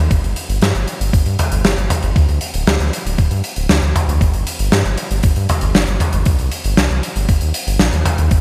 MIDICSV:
0, 0, Header, 1, 3, 480
1, 0, Start_track
1, 0, Tempo, 512821
1, 100, Time_signature, 4, 2, 24, 8
1, 7870, End_track
2, 0, Start_track
2, 0, Title_t, "Analog synth bass"
2, 0, Program_c, 0, 38
2, 100, Note_on_c, 0, 31, 97
2, 203, Note_off_c, 0, 31, 0
2, 219, Note_on_c, 0, 31, 77
2, 322, Note_off_c, 0, 31, 0
2, 459, Note_on_c, 0, 31, 79
2, 562, Note_off_c, 0, 31, 0
2, 578, Note_on_c, 0, 43, 104
2, 682, Note_off_c, 0, 43, 0
2, 700, Note_on_c, 0, 31, 73
2, 803, Note_off_c, 0, 31, 0
2, 939, Note_on_c, 0, 31, 83
2, 1042, Note_off_c, 0, 31, 0
2, 1060, Note_on_c, 0, 31, 102
2, 1163, Note_off_c, 0, 31, 0
2, 1179, Note_on_c, 0, 43, 76
2, 1282, Note_off_c, 0, 43, 0
2, 1420, Note_on_c, 0, 31, 84
2, 1523, Note_off_c, 0, 31, 0
2, 1539, Note_on_c, 0, 31, 105
2, 1642, Note_off_c, 0, 31, 0
2, 1660, Note_on_c, 0, 31, 75
2, 1763, Note_off_c, 0, 31, 0
2, 1900, Note_on_c, 0, 31, 81
2, 2003, Note_off_c, 0, 31, 0
2, 2020, Note_on_c, 0, 38, 93
2, 2123, Note_off_c, 0, 38, 0
2, 2138, Note_on_c, 0, 38, 80
2, 2242, Note_off_c, 0, 38, 0
2, 2378, Note_on_c, 0, 26, 75
2, 2482, Note_off_c, 0, 26, 0
2, 2499, Note_on_c, 0, 38, 107
2, 2602, Note_off_c, 0, 38, 0
2, 2619, Note_on_c, 0, 38, 75
2, 2722, Note_off_c, 0, 38, 0
2, 2858, Note_on_c, 0, 26, 81
2, 2962, Note_off_c, 0, 26, 0
2, 2980, Note_on_c, 0, 26, 105
2, 3083, Note_off_c, 0, 26, 0
2, 3099, Note_on_c, 0, 43, 78
2, 3202, Note_off_c, 0, 43, 0
2, 3338, Note_on_c, 0, 26, 84
2, 3442, Note_off_c, 0, 26, 0
2, 3459, Note_on_c, 0, 38, 100
2, 3563, Note_off_c, 0, 38, 0
2, 3579, Note_on_c, 0, 38, 73
2, 3682, Note_off_c, 0, 38, 0
2, 3819, Note_on_c, 0, 38, 81
2, 3922, Note_off_c, 0, 38, 0
2, 3940, Note_on_c, 0, 31, 101
2, 4043, Note_off_c, 0, 31, 0
2, 4060, Note_on_c, 0, 31, 73
2, 4163, Note_off_c, 0, 31, 0
2, 4300, Note_on_c, 0, 31, 80
2, 4403, Note_off_c, 0, 31, 0
2, 4420, Note_on_c, 0, 43, 106
2, 4523, Note_off_c, 0, 43, 0
2, 4539, Note_on_c, 0, 31, 73
2, 4642, Note_off_c, 0, 31, 0
2, 4779, Note_on_c, 0, 31, 82
2, 4882, Note_off_c, 0, 31, 0
2, 4900, Note_on_c, 0, 31, 100
2, 5003, Note_off_c, 0, 31, 0
2, 5020, Note_on_c, 0, 43, 76
2, 5123, Note_off_c, 0, 43, 0
2, 5259, Note_on_c, 0, 31, 85
2, 5363, Note_off_c, 0, 31, 0
2, 5379, Note_on_c, 0, 31, 103
2, 5482, Note_off_c, 0, 31, 0
2, 5499, Note_on_c, 0, 31, 74
2, 5603, Note_off_c, 0, 31, 0
2, 5741, Note_on_c, 0, 31, 77
2, 5843, Note_off_c, 0, 31, 0
2, 5861, Note_on_c, 0, 36, 99
2, 5963, Note_off_c, 0, 36, 0
2, 5981, Note_on_c, 0, 36, 76
2, 6083, Note_off_c, 0, 36, 0
2, 6221, Note_on_c, 0, 31, 80
2, 6323, Note_off_c, 0, 31, 0
2, 6341, Note_on_c, 0, 36, 110
2, 6443, Note_off_c, 0, 36, 0
2, 6461, Note_on_c, 0, 36, 73
2, 6564, Note_off_c, 0, 36, 0
2, 6700, Note_on_c, 0, 31, 81
2, 6803, Note_off_c, 0, 31, 0
2, 6821, Note_on_c, 0, 31, 97
2, 6923, Note_off_c, 0, 31, 0
2, 6941, Note_on_c, 0, 39, 80
2, 7043, Note_off_c, 0, 39, 0
2, 7179, Note_on_c, 0, 31, 89
2, 7283, Note_off_c, 0, 31, 0
2, 7301, Note_on_c, 0, 34, 101
2, 7403, Note_off_c, 0, 34, 0
2, 7421, Note_on_c, 0, 39, 70
2, 7523, Note_off_c, 0, 39, 0
2, 7661, Note_on_c, 0, 39, 76
2, 7763, Note_off_c, 0, 39, 0
2, 7780, Note_on_c, 0, 31, 101
2, 7870, Note_off_c, 0, 31, 0
2, 7870, End_track
3, 0, Start_track
3, 0, Title_t, "Drums"
3, 100, Note_on_c, 9, 36, 116
3, 100, Note_on_c, 9, 42, 60
3, 194, Note_off_c, 9, 36, 0
3, 194, Note_off_c, 9, 42, 0
3, 227, Note_on_c, 9, 42, 43
3, 321, Note_off_c, 9, 42, 0
3, 339, Note_on_c, 9, 42, 95
3, 433, Note_off_c, 9, 42, 0
3, 464, Note_on_c, 9, 42, 64
3, 557, Note_off_c, 9, 42, 0
3, 576, Note_on_c, 9, 42, 68
3, 585, Note_on_c, 9, 38, 116
3, 670, Note_off_c, 9, 42, 0
3, 679, Note_off_c, 9, 38, 0
3, 701, Note_on_c, 9, 42, 47
3, 794, Note_off_c, 9, 42, 0
3, 820, Note_on_c, 9, 42, 89
3, 913, Note_off_c, 9, 42, 0
3, 946, Note_on_c, 9, 42, 64
3, 1039, Note_off_c, 9, 42, 0
3, 1060, Note_on_c, 9, 36, 122
3, 1064, Note_on_c, 9, 42, 62
3, 1154, Note_off_c, 9, 36, 0
3, 1158, Note_off_c, 9, 42, 0
3, 1178, Note_on_c, 9, 42, 43
3, 1271, Note_off_c, 9, 42, 0
3, 1300, Note_on_c, 9, 42, 88
3, 1303, Note_on_c, 9, 45, 88
3, 1394, Note_off_c, 9, 42, 0
3, 1397, Note_off_c, 9, 45, 0
3, 1420, Note_on_c, 9, 42, 64
3, 1513, Note_off_c, 9, 42, 0
3, 1540, Note_on_c, 9, 42, 64
3, 1542, Note_on_c, 9, 38, 114
3, 1633, Note_off_c, 9, 42, 0
3, 1635, Note_off_c, 9, 38, 0
3, 1666, Note_on_c, 9, 42, 41
3, 1759, Note_off_c, 9, 42, 0
3, 1781, Note_on_c, 9, 42, 99
3, 1781, Note_on_c, 9, 45, 96
3, 1874, Note_off_c, 9, 42, 0
3, 1874, Note_off_c, 9, 45, 0
3, 1896, Note_on_c, 9, 42, 71
3, 1989, Note_off_c, 9, 42, 0
3, 2020, Note_on_c, 9, 36, 124
3, 2022, Note_on_c, 9, 42, 70
3, 2113, Note_off_c, 9, 36, 0
3, 2116, Note_off_c, 9, 42, 0
3, 2140, Note_on_c, 9, 42, 44
3, 2234, Note_off_c, 9, 42, 0
3, 2255, Note_on_c, 9, 42, 91
3, 2349, Note_off_c, 9, 42, 0
3, 2376, Note_on_c, 9, 42, 65
3, 2469, Note_off_c, 9, 42, 0
3, 2501, Note_on_c, 9, 42, 66
3, 2503, Note_on_c, 9, 38, 127
3, 2595, Note_off_c, 9, 42, 0
3, 2597, Note_off_c, 9, 38, 0
3, 2622, Note_on_c, 9, 42, 50
3, 2716, Note_off_c, 9, 42, 0
3, 2745, Note_on_c, 9, 42, 92
3, 2839, Note_off_c, 9, 42, 0
3, 2869, Note_on_c, 9, 42, 60
3, 2962, Note_off_c, 9, 42, 0
3, 2979, Note_on_c, 9, 42, 53
3, 2980, Note_on_c, 9, 36, 110
3, 3073, Note_off_c, 9, 42, 0
3, 3074, Note_off_c, 9, 36, 0
3, 3097, Note_on_c, 9, 42, 49
3, 3190, Note_off_c, 9, 42, 0
3, 3218, Note_on_c, 9, 42, 86
3, 3312, Note_off_c, 9, 42, 0
3, 3334, Note_on_c, 9, 42, 64
3, 3428, Note_off_c, 9, 42, 0
3, 3457, Note_on_c, 9, 38, 110
3, 3457, Note_on_c, 9, 42, 61
3, 3551, Note_off_c, 9, 38, 0
3, 3551, Note_off_c, 9, 42, 0
3, 3577, Note_on_c, 9, 42, 42
3, 3670, Note_off_c, 9, 42, 0
3, 3703, Note_on_c, 9, 45, 99
3, 3705, Note_on_c, 9, 42, 87
3, 3797, Note_off_c, 9, 45, 0
3, 3799, Note_off_c, 9, 42, 0
3, 3828, Note_on_c, 9, 42, 63
3, 3922, Note_off_c, 9, 42, 0
3, 3940, Note_on_c, 9, 36, 115
3, 3947, Note_on_c, 9, 42, 59
3, 4033, Note_off_c, 9, 36, 0
3, 4041, Note_off_c, 9, 42, 0
3, 4058, Note_on_c, 9, 42, 39
3, 4152, Note_off_c, 9, 42, 0
3, 4182, Note_on_c, 9, 42, 98
3, 4275, Note_off_c, 9, 42, 0
3, 4298, Note_on_c, 9, 42, 60
3, 4392, Note_off_c, 9, 42, 0
3, 4419, Note_on_c, 9, 38, 122
3, 4425, Note_on_c, 9, 42, 62
3, 4512, Note_off_c, 9, 38, 0
3, 4519, Note_off_c, 9, 42, 0
3, 4541, Note_on_c, 9, 42, 49
3, 4635, Note_off_c, 9, 42, 0
3, 4657, Note_on_c, 9, 42, 89
3, 4751, Note_off_c, 9, 42, 0
3, 4781, Note_on_c, 9, 42, 61
3, 4874, Note_off_c, 9, 42, 0
3, 4894, Note_on_c, 9, 42, 68
3, 4900, Note_on_c, 9, 36, 118
3, 4988, Note_off_c, 9, 42, 0
3, 4994, Note_off_c, 9, 36, 0
3, 5016, Note_on_c, 9, 42, 43
3, 5110, Note_off_c, 9, 42, 0
3, 5139, Note_on_c, 9, 42, 89
3, 5144, Note_on_c, 9, 45, 87
3, 5232, Note_off_c, 9, 42, 0
3, 5237, Note_off_c, 9, 45, 0
3, 5252, Note_on_c, 9, 42, 57
3, 5346, Note_off_c, 9, 42, 0
3, 5379, Note_on_c, 9, 42, 70
3, 5382, Note_on_c, 9, 38, 110
3, 5473, Note_off_c, 9, 42, 0
3, 5475, Note_off_c, 9, 38, 0
3, 5495, Note_on_c, 9, 42, 44
3, 5588, Note_off_c, 9, 42, 0
3, 5618, Note_on_c, 9, 45, 92
3, 5622, Note_on_c, 9, 42, 85
3, 5711, Note_off_c, 9, 45, 0
3, 5715, Note_off_c, 9, 42, 0
3, 5734, Note_on_c, 9, 42, 62
3, 5828, Note_off_c, 9, 42, 0
3, 5855, Note_on_c, 9, 42, 68
3, 5861, Note_on_c, 9, 36, 114
3, 5948, Note_off_c, 9, 42, 0
3, 5954, Note_off_c, 9, 36, 0
3, 5978, Note_on_c, 9, 42, 43
3, 6072, Note_off_c, 9, 42, 0
3, 6099, Note_on_c, 9, 42, 85
3, 6192, Note_off_c, 9, 42, 0
3, 6218, Note_on_c, 9, 42, 56
3, 6312, Note_off_c, 9, 42, 0
3, 6340, Note_on_c, 9, 38, 115
3, 6345, Note_on_c, 9, 42, 74
3, 6434, Note_off_c, 9, 38, 0
3, 6439, Note_off_c, 9, 42, 0
3, 6463, Note_on_c, 9, 42, 42
3, 6557, Note_off_c, 9, 42, 0
3, 6582, Note_on_c, 9, 42, 82
3, 6676, Note_off_c, 9, 42, 0
3, 6701, Note_on_c, 9, 42, 64
3, 6794, Note_off_c, 9, 42, 0
3, 6820, Note_on_c, 9, 36, 103
3, 6820, Note_on_c, 9, 42, 65
3, 6913, Note_off_c, 9, 42, 0
3, 6914, Note_off_c, 9, 36, 0
3, 6934, Note_on_c, 9, 42, 48
3, 7028, Note_off_c, 9, 42, 0
3, 7058, Note_on_c, 9, 42, 101
3, 7152, Note_off_c, 9, 42, 0
3, 7184, Note_on_c, 9, 42, 67
3, 7278, Note_off_c, 9, 42, 0
3, 7296, Note_on_c, 9, 38, 105
3, 7302, Note_on_c, 9, 42, 62
3, 7389, Note_off_c, 9, 38, 0
3, 7396, Note_off_c, 9, 42, 0
3, 7419, Note_on_c, 9, 42, 47
3, 7513, Note_off_c, 9, 42, 0
3, 7540, Note_on_c, 9, 45, 95
3, 7541, Note_on_c, 9, 42, 90
3, 7633, Note_off_c, 9, 45, 0
3, 7635, Note_off_c, 9, 42, 0
3, 7659, Note_on_c, 9, 42, 62
3, 7752, Note_off_c, 9, 42, 0
3, 7777, Note_on_c, 9, 42, 61
3, 7780, Note_on_c, 9, 36, 105
3, 7870, Note_off_c, 9, 36, 0
3, 7870, Note_off_c, 9, 42, 0
3, 7870, End_track
0, 0, End_of_file